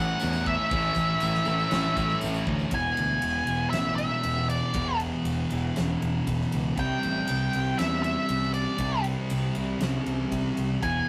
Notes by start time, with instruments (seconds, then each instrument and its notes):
Already playing: fingered electric bass A1, overdriven electric guitar A2 E3 A3 C#4 E4, distorted electric guitar A2 E3 A3 C#4 E4, lead electric guitar F#5
0.20 fingered electric bass E2, tambourine, crash
0.33 tambourine
0.44 lead electric guitar E5, kick, tambourine
0.69 fingered electric bass A1, overdriven electric guitar A2 E3 A3 C#4 E4, distorted electric guitar A2 E3 A3 C#4, kick, tambourine, crash
0.74 distorted electric guitar E4
0.81 tambourine
0.94 fingered electric bass A1, kick, tambourine
1.20 fingered electric bass A1, tambourine, crash
1.34 snare
1.44 fingered electric bass A1, overdriven electric guitar A2 E3 A3 C#4 E4, tambourine
1.59 tambourine
1.71 fingered electric bass A1, distorted electric guitar A2 E3 A3 C#4, snare, tambourine, crash
1.75 distorted electric guitar E4
1.83 tambourine
1.97 fingered electric bass A1, kick, tambourine
2.09 tambourine
2.21 fingered electric bass A1, tambourine, crash
2.34 tambourine
2.47 fingered electric bass D2, kick
2.59 tambourine
2.71 fingered electric bass E1, overdriven electric guitar E2 B2 E3 G#3 B3 E4, lead electric guitar G#5, kick, ride
2.97 fingered electric bass D2, ride
3.22 fingered electric bass E1, ride
3.47 fingered electric bass E1, overdriven electric guitar E2 B2 E3 G#3 B3 E4, ride
3.70 fingered electric bass A1, distorted electric guitar E2 B2, lead electric guitar E5, snare, ride
3.75 distorted electric guitar E3
3.96 lead electric guitar E5, ride
4.23 fingered electric bass E1, ride
4.50 lead electric guitar D5, ride
4.74 fingered electric bass E1, overdriven electric guitar E2 B2 E3 G#3 B3 E4, kick, ride
5.00 ride
5.25 fingered electric bass E1, ride
5.50 fingered electric bass E1, overdriven electric guitar E2 B2 E3 G#3 B3 E4, ride
5.76 fingered electric bass E1, distorted electric guitar E2 B2 E3, snare, ride
6.02 fingered electric bass E1, ride
6.27 fingered electric bass E1, kick, ride
6.41 snare
6.52 fingered electric bass C#2, ride
6.77 fingered electric bass C2, overdriven electric guitar C3 E3 G3 C4 E4, lead electric guitar G5, kick, ride
7.03 fingered electric bass A1, ride
7.28 fingered electric bass C2, ride
7.53 fingered electric bass C2, overdriven electric guitar C3 E3 G3 C4 E4, ride
7.78 fingered electric bass E2, distorted electric guitar C3 G3 C4, lead electric guitar E5, snare, ride
8.03 lead electric guitar E5, ride
8.29 fingered electric bass C2, ride
8.42 snare
8.54 lead electric guitar D5, ride
8.78 fingered electric bass C2, overdriven electric guitar C3 E3 G3 C4 E4, kick, ride
9.04 ride
9.30 fingered electric bass C2, ride
9.55 fingered electric bass C2, overdriven electric guitar C3 E3 G3 C4 E4, ride
9.80 fingered electric bass C2, distorted electric guitar C3 G3 C4, snare, ride
10.06 fingered electric bass C2, ride
10.32 fingered electric bass C2, kick, ride
10.57 fingered electric bass C2, ride
10.82 fingered electric bass E1, overdriven electric guitar E2 B2 E3 G#3 B3 E4, lead electric guitar G#5, kick, ride